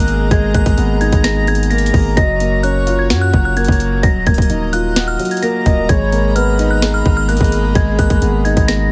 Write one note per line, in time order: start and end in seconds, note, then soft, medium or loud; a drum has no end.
0.00 0.30 G#1 loud
0.00 0.31 G#3 medium
0.00 0.55 A#3 loud
0.00 0.78 B3 medium
0.00 0.31 D#4 medium
0.00 0.54 G#4 medium
0.00 2.13 G#4 medium
0.00 2.13 D#5 medium
0.00 3.99 A#5 medium
0.00 0.28 F#6 medium
0.00 closed hi-hat medium
0.08 closed hi-hat medium
0.31 0.53 G#1 loud
0.31 1.46 G#3 loud
0.31 0.50 G#6 medium
0.31 kick loud
0.31 closed hi-hat medium
0.54 0.66 G#1 loud
0.54 1.69 A#3 medium
0.54 0.73 F#6 medium
0.54 kick loud
0.54 closed hi-hat medium
0.66 0.77 G#1 loud
0.66 kick loud
0.66 closed hi-hat medium
0.78 1.11 G#1 loud
0.78 1.94 B3 medium
0.78 closed hi-hat medium
1.01 2.17 D#4 loud
1.01 1.20 G#6 medium
1.01 closed hi-hat soft
1.12 1.91 G#1 loud
1.12 kick loud
1.12 closed hi-hat medium
1.24 2.17 G#4 medium
1.24 1.43 A#6 medium
1.24 finger snap medium
1.24 snare loud
1.24 closed hi-hat medium
1.47 2.17 G#3 medium
1.47 1.67 G#6 loud
1.47 closed hi-hat soft
1.55 closed hi-hat medium
1.63 closed hi-hat medium
1.70 2.17 A#3 medium
1.70 1.89 A#6 medium
1.70 closed hi-hat soft
1.78 closed hi-hat medium
1.86 closed hi-hat medium
1.94 2.16 G#1 loud
1.94 kick medium
1.94 open hi-hat medium
2.17 3.12 F#1 loud
2.17 3.32 F#3 medium
2.17 5.86 F#3 medium
2.17 4.01 C#5 medium
2.17 2.61 D#5 loud
2.17 2.61 A#6 loud
2.17 kick loud
2.17 closed hi-hat medium
2.40 3.55 A#3 medium
2.40 closed hi-hat medium
2.63 3.80 C#4 medium
2.63 3.07 C#5 medium
2.63 2.96 F#6 medium
2.63 closed hi-hat medium
2.87 4.03 F4 medium
2.87 closed hi-hat medium
2.99 3.17 G#6 medium
3.10 3.32 F#2 loud
3.10 4.03 F#4 medium
3.10 finger snap medium
3.10 snare loud
3.10 closed hi-hat medium
3.21 3.40 F#6 medium
3.33 3.67 F#1 loud
3.33 4.02 F#3 medium
3.33 kick loud
3.45 3.55 F#6 medium
3.56 4.03 A#3 loud
3.56 4.00 G#6 medium
3.56 closed hi-hat soft
3.65 4.02 F#1 loud
3.65 kick medium
3.65 closed hi-hat medium
3.72 closed hi-hat medium
3.80 closed hi-hat medium
4.03 4.26 D#1 loud
4.03 5.18 F#3 medium
4.03 5.88 D#5 medium
4.03 8.92 A#5 medium
4.03 4.22 A#6 medium
4.03 kick loud
4.03 closed hi-hat medium
4.27 4.38 D#1 loud
4.27 5.41 A#3 medium
4.27 4.45 G#6 medium
4.27 kick loud
4.27 closed hi-hat soft
4.34 4.49 D#1 loud
4.34 kick loud
4.34 closed hi-hat medium
4.42 closed hi-hat medium
4.50 5.17 D#1 loud
4.50 5.66 D#4 medium
4.50 closed hi-hat medium
4.73 5.89 F4 loud
4.73 5.06 F#6 medium
4.73 closed hi-hat medium
4.96 5.90 F#4 medium
4.96 finger snap medium
4.96 snare loud
4.96 closed hi-hat medium
5.08 5.26 F6 medium
5.19 5.89 F#3 medium
5.19 closed hi-hat medium
5.25 closed hi-hat medium
5.31 5.41 G#6 medium
5.31 closed hi-hat medium
5.37 closed hi-hat medium
5.43 5.89 A#3 medium
5.43 5.65 A#4 medium
5.43 5.86 A#6 medium
5.43 closed hi-hat medium
5.66 5.88 D#1 loud
5.66 5.88 D#5 medium
5.66 kick medium
5.66 closed hi-hat medium
5.89 7.02 G#1 loud
5.89 7.04 G#3 medium
5.89 8.92 G#4 medium
5.89 6.33 C#5 loud
5.89 8.92 D#5 medium
5.89 8.92 B5 medium
5.89 6.33 G#6 loud
5.89 kick loud
5.89 closed hi-hat medium
6.12 7.27 A#3 medium
6.12 closed hi-hat medium
6.36 7.52 B3 medium
6.36 6.79 B4 medium
6.36 6.69 F6 medium
6.36 closed hi-hat medium
6.59 7.75 D#4 loud
6.59 closed hi-hat medium
6.71 6.89 F#6 medium
6.82 7.99 G#4 medium
6.82 finger snap medium
6.82 snare loud
6.82 closed hi-hat medium
6.94 7.13 F6 medium
7.06 7.39 G#1 loud
7.06 7.74 G#3 medium
7.06 kick loud
7.17 7.26 F6 medium
7.29 7.97 A#3 medium
7.29 7.72 F#6 medium
7.29 closed hi-hat soft
7.37 7.74 G#1 loud
7.37 kick medium
7.37 closed hi-hat medium
7.44 closed hi-hat medium
7.52 closed hi-hat medium
7.75 7.98 G#1 loud
7.75 8.90 G#3 loud
7.75 7.94 G#6 medium
7.75 kick loud
7.75 closed hi-hat medium
7.99 8.10 G#1 loud
7.99 8.92 A#3 medium
7.99 8.18 F#6 medium
7.99 kick loud
7.99 closed hi-hat medium
8.10 8.21 G#1 loud
8.10 kick loud
8.10 closed hi-hat medium
8.22 8.55 G#1 loud
8.22 8.92 B3 medium
8.22 closed hi-hat medium
8.45 8.92 D#4 medium
8.45 8.64 G#6 medium
8.45 closed hi-hat soft
8.57 8.92 G#1 loud
8.57 kick loud
8.57 closed hi-hat medium
8.68 8.92 G#4 medium
8.68 8.87 A#6 medium
8.68 finger snap medium
8.68 snare loud
8.68 closed hi-hat medium